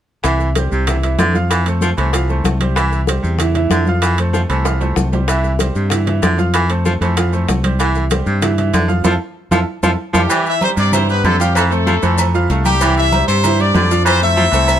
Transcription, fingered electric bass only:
0.24 0.68 C2 medium
0.72 1.16 C2 medium
1.19 1.92 F2 medium
1.98 2.42 C2 loud
2.45 3.18 C2 medium
3.24 3.68 E2 medium
3.70 4.44 F2 medium
4.49 4.93 C2 medium
4.96 5.70 C2 medium
5.75 6.19 G2 medium
6.23 6.96 F2 medium
7.01 7.45 F2 medium
7.48 8.21 C2 medium
8.26 8.70 G2 medium
8.73 9.03 F2 loud
9.05 9.17 F2 loud
9.51 9.63 F2 medium
9.83 9.95 F2 loud
10.14 10.26 F2 medium
10.77 11.21 G2 medium
11.24 11.97 F2 loud
12.03 12.46 F2 medium
12.50 13.22 C2 loud
13.28 13.71 G2 medium
13.75 14.47 F2 loud
14.52 14.80 C2 medium

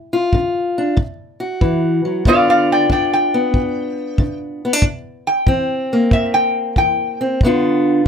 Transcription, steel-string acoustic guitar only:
0.00 0.28 G2 medium
0.13 0.95 F4 medium
0.34 0.93 D3 medium
0.78 0.95 D4 medium
0.97 1.57 D3 medium
1.40 2.23 F#4 medium
1.61 2.05 E3 medium
2.05 2.26 F#3 medium
2.26 2.86 G2 medium
2.26 2.88 D3 medium
2.26 3.33 B3 medium
2.26 2.89 D4 medium
2.26 4.83 F4 medium
2.90 3.50 D3 medium
2.90 4.63 D4 medium
3.34 4.64 B3 medium
3.55 4.15 G2 medium
4.19 4.79 D3 medium
4.65 4.73 B3 medium
4.73 4.83 D4 soft
4.83 5.43 C3 medium
5.46 6.08 E3 medium
5.46 7.20 C4 medium
5.93 7.40 A#3 medium
6.11 6.72 G2 medium
6.77 7.37 E3 medium
7.21 7.39 C4 medium
7.43 8.03 G2 medium
7.43 8.04 D3 medium
7.43 8.08 B3 medium
7.43 8.06 D4 medium
7.43 8.08 F4 medium

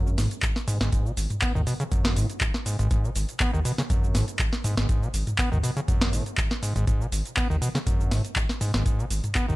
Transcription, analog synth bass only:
0.00 0.26 G#1 medium
0.43 0.52 G#1 loud
0.81 0.89 G#1 medium
1.17 1.27 G#1 loud
1.55 1.64 D#2 loud
1.92 2.24 G#1 medium
2.41 2.51 G#1 loud
2.79 2.88 G#1 medium
3.16 3.25 G#1 loud
3.53 3.62 D#2 loud
3.90 4.22 G#1 medium
4.40 4.49 G#1 loud
4.77 4.86 G#1 medium
5.14 5.24 G#1 loud
5.52 5.60 D#2 medium
5.88 6.21 G#1 medium
6.38 6.47 G#1 loud
6.76 6.84 G#1 medium
7.12 7.22 G#1 loud
7.50 7.59 D#2 medium
7.87 8.19 G#1 medium
8.36 8.46 G#1 loud
8.74 8.83 G#1 medium
9.10 9.20 G#1 loud
9.48 9.56 D#2 medium

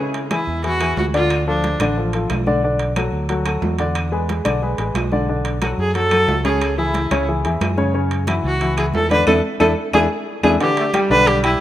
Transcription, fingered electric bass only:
0.47 0.94 E2 medium
0.97 1.74 D2 medium
1.79 2.26 A1 medium
2.30 3.07 B1 medium
3.12 3.59 D2 medium
3.62 4.40 E2 medium
4.45 4.76 B1 medium
4.78 4.94 A1 medium
4.94 5.72 B1 medium
5.78 6.24 F#2 medium
6.27 7.05 C#2 medium
7.11 7.42 C#2 medium
7.44 7.60 E2 medium
7.61 8.39 F#2 medium
8.44 8.90 C#2 medium
8.94 9.25 E2 loud
9.27 9.40 E2 medium
9.60 9.73 E2 loud
9.93 10.06 E2 medium
10.43 10.56 E2 medium
11.10 11.56 B1 medium

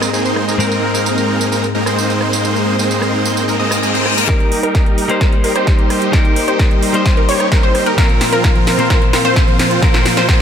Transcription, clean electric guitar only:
0.00 0.56 G#2 medium
0.00 0.56 G#3 medium
0.00 0.57 C4 medium
0.00 0.57 D#4 medium
0.00 0.57 A#4 medium
0.58 4.25 G#2 medium
0.58 4.26 G#3 medium
0.58 4.26 C4 medium
0.58 4.26 D#4 medium
0.58 4.26 A#4 medium
4.27 5.06 G3 medium
4.27 5.06 A#3 medium
4.27 5.07 D#4 medium
4.27 5.07 A#4 medium
5.08 6.10 G3 medium
5.08 6.10 A#3 medium
5.08 6.11 D#4 medium
5.08 6.11 C5 medium
6.12 6.91 G3 medium
6.12 6.91 A#3 medium
6.12 6.91 D#4 medium
6.12 6.92 A#4 medium
6.93 7.95 G3 medium
6.93 7.95 A#3 medium
6.93 7.95 D#4 medium
6.93 7.96 C5 medium
7.97 8.75 A#2 medium
7.97 8.76 F3 medium
7.97 8.76 A#3 medium
7.97 8.76 C4 medium
7.97 8.77 A#4 medium
8.77 9.79 A#2 medium
8.77 9.79 F3 medium
8.77 9.80 A#3 medium
8.77 9.80 C4 medium
8.77 9.80 C5 medium
9.81 10.42 A#2 medium
9.81 10.42 F3 medium
9.81 10.42 A#3 medium
9.81 10.42 C4 medium
9.81 10.42 A#4 medium

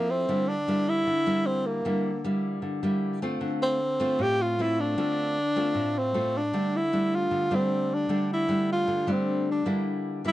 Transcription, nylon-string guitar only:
0.00 0.25 F3 medium
0.00 0.25 C4 medium
0.00 0.26 E4 medium
0.29 1.05 D3 medium
0.29 0.54 G3 medium
0.29 0.54 A#3 soft
0.29 0.54 E4 soft
0.68 1.06 G3 medium
0.68 1.06 A#3 soft
0.68 1.07 E4 medium
1.07 1.83 D3 medium
1.26 1.82 G3 medium
1.26 1.82 A#3 medium
1.26 1.82 E4 medium
1.85 2.61 D3 medium
1.85 2.10 G3 medium
1.85 2.10 A#3 medium
1.85 2.10 E4 medium
2.24 2.80 G3 medium
2.24 2.80 A#3 soft
2.24 2.80 E4 medium
2.62 3.39 D3 medium
2.83 3.19 G3 medium
2.83 3.19 A#3 medium
2.83 3.19 E4 medium
3.22 3.77 A3 medium
3.22 3.78 C4 medium
3.22 3.78 F4 medium
3.41 4.17 D3 medium
4.00 4.55 A3 medium
4.00 4.55 C4 medium
4.00 4.56 F4 medium
4.19 4.95 A2 medium
4.59 4.95 A3 soft
4.59 4.95 C4 medium
4.59 4.95 F4 medium
4.97 5.74 D3 medium
4.97 5.36 A3 soft
4.97 5.36 C4 medium
4.97 5.37 F4 medium
5.56 6.12 A3 medium
5.56 6.12 C4 medium
5.56 6.12 F4 medium
5.74 6.51 A2 medium
6.14 6.40 A3 medium
6.14 6.40 C4 medium
6.14 6.40 F4 medium
6.53 7.30 D3 medium
6.53 6.79 G3 soft
6.53 6.79 A3 soft
6.53 6.79 D4 medium
6.93 7.48 G3 soft
6.93 7.49 A3 medium
6.93 7.49 D4 medium
7.31 8.08 D3 medium
7.51 8.07 G3 medium
7.51 8.07 A3 medium
7.51 8.07 D4 medium
8.09 8.86 D3 medium
8.09 8.46 G3 soft
8.09 8.46 A3 soft
8.09 8.46 D4 soft
8.48 9.05 G3 medium
8.48 9.05 A3 medium
8.48 9.05 D4 medium
8.88 9.65 D3 medium
9.07 9.63 G3 medium
9.07 9.63 A3 medium
9.07 9.64 D4 medium
9.66 10.32 D3 medium
9.66 10.22 G3 soft
9.66 10.22 A#3 medium
9.66 10.22 E4 medium
10.24 10.32 G3 medium
10.24 10.32 A#3 medium
10.24 10.32 E4 medium

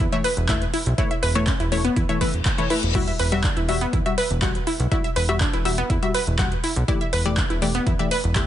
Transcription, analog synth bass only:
0.37 0.67 E1 loud
0.86 0.94 B1 loud
1.23 1.53 E1 loud
1.60 1.90 E1 medium
1.96 2.05 E2 medium
2.34 2.41 E1 medium
2.83 3.12 E1 medium
3.19 3.49 E1 loud
3.57 3.86 E1 medium
3.93 4.01 E2 medium
4.30 4.60 E1 loud
4.80 4.87 B1 loud
5.16 5.46 E1 loud
5.53 5.83 E1 medium
5.90 5.98 E2 medium
6.27 6.57 E1 loud
6.76 6.84 B1 loud
7.13 7.43 E1 loud
7.50 7.80 E1 medium
7.87 7.95 E2 medium
8.24 8.47 E1 loud

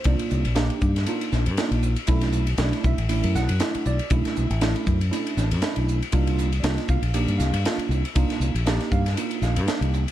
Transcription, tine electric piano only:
0.05 0.42 A#3 medium
0.05 0.42 D4 medium
0.05 0.43 D#4 medium
0.05 0.43 F4 medium
0.05 0.53 D5 medium
0.55 0.93 A#3 medium
0.55 0.93 D4 medium
0.55 0.93 D#4 medium
0.55 0.93 G4 medium
1.07 1.44 A#3 medium
1.07 1.44 D4 medium
1.07 1.44 D#4 medium
1.07 1.44 F4 medium
1.59 1.95 A#3 medium
1.59 1.95 D4 medium
1.59 1.95 D#4 medium
1.59 1.95 F4 medium
2.08 2.45 A3 medium
2.08 2.45 C#4 medium
2.08 2.45 D4 medium
2.08 2.45 E4 loud
2.59 2.96 A3 medium
2.59 2.96 C#4 medium
2.59 2.96 D4 medium
2.59 2.96 E4 medium
2.59 2.85 D5 medium
2.86 3.33 E5 medium
3.09 3.46 A3 medium
3.09 3.46 C#4 medium
3.09 3.46 D4 medium
3.09 3.46 E4 medium
3.35 3.82 F#5 medium
3.60 3.97 A3 medium
3.60 3.97 C#4 medium
3.60 3.97 D4 medium
3.60 3.97 E4 medium
3.87 4.11 D5 medium
4.11 4.48 A3 medium
4.11 4.47 C#4 medium
4.11 4.48 D4 medium
4.11 4.48 E4 medium
4.11 4.59 E5 medium
4.61 4.98 A3 medium
4.61 4.98 C#4 medium
4.61 4.98 D4 medium
4.61 4.98 E4 medium
5.11 5.48 A3 medium
5.11 5.48 C#4 medium
5.11 5.48 D4 medium
5.11 5.48 E4 medium
5.62 5.99 A3 medium
5.62 5.99 C#4 medium
5.62 5.99 D4 medium
5.62 5.99 E4 medium
6.12 6.50 A#3 medium
6.12 6.50 D4 medium
6.12 6.49 D#4 medium
6.12 6.50 F4 medium
6.60 7.00 A#3 medium
6.60 7.00 D4 medium
6.60 7.00 D#4 medium
6.60 7.00 F4 medium
6.60 6.63 D5 soft
6.64 6.89 D#5 medium
6.90 7.37 F5 medium
7.14 7.51 A#3 medium
7.14 7.51 D4 medium
7.14 7.51 D#4 medium
7.14 7.51 G4 medium
7.38 7.86 F5 medium
7.64 8.01 A#3 medium
7.64 8.02 D4 medium
7.64 8.01 D#4 medium
7.64 8.02 F4 medium
8.15 8.52 A#3 medium
8.15 8.52 D4 medium
8.15 8.52 D#4 medium
8.15 8.52 F4 medium
8.66 9.03 A#3 medium
8.66 9.03 D4 medium
8.66 9.03 D#4 medium
8.66 9.03 G4 medium
8.66 8.90 D#5 medium
8.92 9.39 F5 medium
9.17 9.54 A#3 medium
9.17 9.53 D4 medium
9.17 9.54 D#4 medium
9.17 9.54 F4 medium
9.43 9.90 F5 medium
9.66 10.03 A#3 medium
9.66 10.03 D4 medium
9.66 10.03 D#4 medium
9.66 10.03 G4 medium

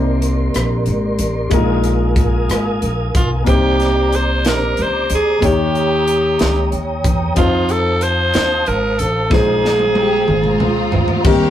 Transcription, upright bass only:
0.00 0.50 C2 medium
0.54 0.84 A#1 medium
0.87 1.17 G#1 medium
1.19 1.49 A1 medium
1.52 2.45 A#1 medium
2.49 2.79 G#1 medium
2.83 3.12 A#1 medium
3.15 3.44 B1 medium
3.48 4.46 C2 medium
4.46 4.75 A#1 medium
4.79 5.08 C#2 medium
5.10 5.40 D2 medium
5.43 6.35 D#2 medium
6.41 6.70 C#2 medium
6.73 7.02 D#2 medium
7.05 7.34 E2 medium
7.37 8.30 F2 medium
8.35 8.64 D#2 medium
8.68 8.97 G#1 medium
9.00 9.29 A1 medium
9.31 10.24 A#1 medium
10.28 10.58 G#1 medium
10.61 10.91 C#2 medium
10.95 11.23 D2 medium
11.25 11.50 D#2 loud

